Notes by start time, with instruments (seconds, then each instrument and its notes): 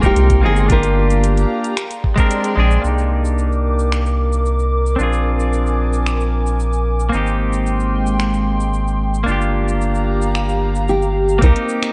Already playing: analog synth bass D#1, analog synth pad G#3 G5 C6
0.02 clean electric guitar A#3 C4 D#4 A#4, kick, cabasa
0.06 nylon-string guitar G4
0.16 analog synth bass C2, closed hi-hat, cabasa
0.30 kick, closed hi-hat, cabasa
0.42 analog synth bass G1, clean electric guitar A#3 C4 D#4 G#4
0.46 nylon-string guitar G#4
0.56 cabasa
0.66 clean electric guitar A#3 D4, analog synth pad F5 A#5, closed hi-hat, cabasa
0.70 clean electric guitar F4 G4, analog synth pad G4, nylon-string guitar A#4, kick
0.83 closed hi-hat, cabasa
1.11 closed hi-hat, cabasa
1.24 closed hi-hat, cabasa
1.38 closed hi-hat, cabasa
1.65 closed hi-hat, cabasa
1.77 analog synth pad G#4 D5 G5 C6, finger snap, closed hi-hat, cabasa
1.91 closed hi-hat, cabasa
2.04 kick
2.16 clean electric guitar G#3 C4 D4, kick, closed hi-hat, cabasa
2.20 clean electric guitar A#4
2.31 closed hi-hat, cabasa
2.44 closed hi-hat, cabasa
2.56 analog synth bass A#1, clean electric guitar G#3 C4 D4 G#4
2.71 cabasa
2.81 analog synth bass C2, clean electric guitar A#3 D4, analog synth pad A#4 D6, cabasa
2.86 clean electric guitar D#4 G4
2.98 cabasa
3.25 cabasa
3.39 cabasa
3.52 cabasa
3.79 cabasa
3.92 finger snap, cabasa
4.06 cabasa
4.33 cabasa
4.46 cabasa
4.59 cabasa
4.86 cabasa
4.96 analog synth bass A#1, clean electric guitar C4 D4, analog synth pad G#5, cabasa
5.01 clean electric guitar F4 G#4
5.13 cabasa
5.40 cabasa
5.53 cabasa
5.67 cabasa
5.93 cabasa
6.07 finger snap, cabasa
6.20 cabasa
6.47 cabasa
6.60 cabasa
6.73 cabasa
7.00 cabasa
7.09 analog synth pad G#3 G5 C6, clean electric guitar A#3 C4, cabasa
7.14 analog synth bass G#1, clean electric guitar D#4 G4
7.27 cabasa
7.53 cabasa
7.66 cabasa
7.80 cabasa
8.07 cabasa
8.20 finger snap, cabasa
8.34 cabasa
8.60 cabasa
8.74 cabasa
8.88 cabasa
9.14 cabasa
9.24 analog synth bass G1, clean electric guitar A#3 D4, analog synth pad F5 A#5
9.28 clean electric guitar F4 G4, analog synth pad G4, cabasa
9.41 cabasa
9.68 cabasa
9.81 cabasa
9.95 cabasa
10.22 cabasa
10.35 finger snap, cabasa
10.49 cabasa
10.75 cabasa
10.89 nylon-string guitar G4, cabasa
11.02 cabasa
11.29 cabasa
11.39 analog synth bass C2, clean electric guitar A#3 C4, analog synth pad A#4 D6, kick, closed hi-hat, cabasa
11.43 clean electric guitar D#4 G4, nylon-string guitar A#4
11.56 closed hi-hat
11.69 cabasa
11.83 finger snap, closed hi-hat, cabasa